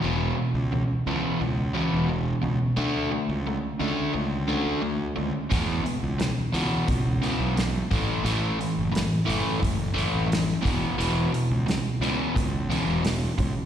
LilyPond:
<<
  \new Staff \with { instrumentName = "Overdriven electric guitar" } { \clef bass \time 4/4 \key a \major \tempo 4 = 88 <e, b, e>8 <e, b,>8 <e, b,>8 <e, b, e>8 <e, b,>8 <e, b, e>8 <e, b,>8 <e, b,>8 | <d a d'>8 <d a>8 <d a>8 <d a d'>8 <d a>8 <d a d'>8 <d a>8 <d a>8 | <e, b, e>8 <e, b,>8 <e, b,>8 <e, b, e>8 <e, b,>8 <e, b, e>8 <e, b,>8 <a, e a>8 | <a, e a>8 <a, e>8 <a, e>8 <a, e a>8 <a, e>8 <a, e a>8 <a, e>8 <e, b, e>8 |
<e, b, e>8 <e, b,>8 <e, b,>8 <e, b, e>8 <e, b,>8 <e, b, e>8 <e, b,>8 <e, b,>8 | }
  \new Staff \with { instrumentName = "Fingered electric bass" } { \clef bass \time 4/4 \key a \major e,,8 r16 cis,8 r16 cis,16 r16 cis,8. e,,8. cis,16 r16 | d,8 r16 cis,8 r16 cis,16 r16 cis,8. d,8. cis,16 r16 | e,8 r16 cis,8 r16 cis,16 r16 cis,8. b,,8. a,,16 r16 | a,,8 r16 fis,,8 r16 fis,,16 r16 fis,,8. a,,8. e,,16 r16 |
e,,8 r16 cis,8 r16 cis,16 r16 cis,8. e,,8. cis,16 r16 | }
  \new DrumStaff \with { instrumentName = "Drums" } \drummode { \time 4/4 r4 r4 r4 r4 | r4 r4 r4 r4 | <hho bd>8 hho8 <hho sn>8 hho8 <hho bd>8 hho8 <hho sn>8 <hho bd>8 | hho8 hho8 <hho sn>8 hho8 <hho bd>8 hho8 <hho sn>8 <hho bd>8 |
hho8 hho8 <hho sn>8 hho8 <hho bd>8 hho8 <hho sn>8 <hho bd>8 | }
>>